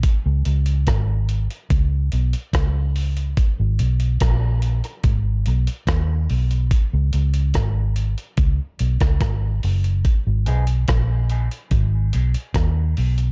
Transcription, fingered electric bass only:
\new Staff \with { instrumentName = "Fingered electric bass" } { \clef bass \time 4/4 \key gis \minor \tempo 4 = 72 r16 cis,16 cis,8 gis,,8. r16 cis,8 b,,16 r16 cis,4 | r16 gis,,16 b,,8 ais,,8. r16 gis,,8 b,,16 r16 dis,8 b,,8 | r16 cis,16 cis,8 gis,,8. r16 cis,16 r16 b,,16 cis,16 gis,,8 fis,,8 | r16 gis,,16 b,,8 ais,,8. r16 gis,,8 b,,16 r16 dis,8 b,,8 | }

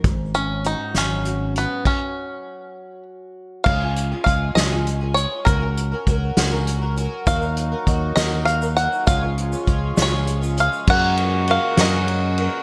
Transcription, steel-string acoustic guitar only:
\new Staff \with { instrumentName = "Steel-string acoustic guitar" } { \time 6/8 \key cis \mixolydian \tempo 4. = 66 << { r8 cis'8 fis'8 cis'8 fis'8 fis'8~ | fis'2. | r2. | r2. |
r2. | r2. | r2. | } \\ { <gis, fis>4. fis4.~ | fis2. | r2. | r2. |
r2. | r2. | r2. | } >> }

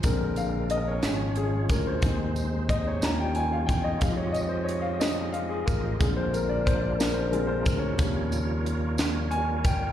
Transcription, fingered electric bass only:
\new Staff \with { instrumentName = "Fingered electric bass" } { \clef bass \time 6/8 \key bes \dorian \tempo 4. = 60 bes,,4. aes,,4 d,8 | ees,4. ees,4 fes,8 | f,2~ f,8 a,,8 | bes,,2~ bes,,8 d,8 |
ees,2~ ees,8 g,,8 | }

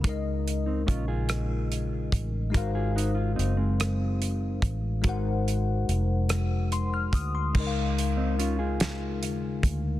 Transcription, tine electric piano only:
\new Staff \with { instrumentName = "Tine electric piano" } { \time 6/8 \key des \major \tempo 4. = 48 << { r2. | r2. | r2 c'''16 f'''16 ees'''16 c'''16~ | c'''16 r2 r8. | } \\ { <des aes ees' bes' ees''>2. | <aes ees' ges' bes' c'' f''>2. | <aes ees' ges' bes' c'' ges''>2. | <des aes ees' bes' ees'' f''>2. | } >> }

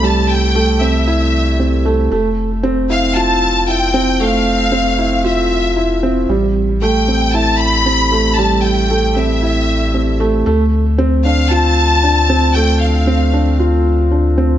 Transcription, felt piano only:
\new Staff \with { instrumentName = "Felt piano" } { \time 4/4 \key a \minor \tempo 4 = 115 g8 r8 a8 c'8 e'8 r8 c'8 a8 | a8 r8 c'8 e'8 f'8 r8 e'8 c'8 | a8 r8 c'8 e'8 f'8 r8 e'8 c'8 | g8 r8 a8 c'8 e'8 r8 c'8 a8 |
g8 r8 a8 c'8 e'8 r8 c'8 a8 | a8 r8 c'8 d'8 f'8 r8 d'8 c'8 | a8 r8 c'8 d'8 f'8 r8 d'8 c'8 | }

